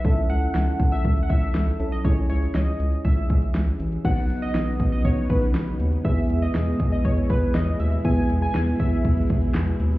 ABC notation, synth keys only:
X:1
M:4/4
L:1/8
Q:1/4=120
K:Bmix
V:1 name="Synth keys"
[CEA]6- [CEA] [CEA] | [CEG]8 | [B,DF]8 | [B,EG]8 |
[B,EG]8 |]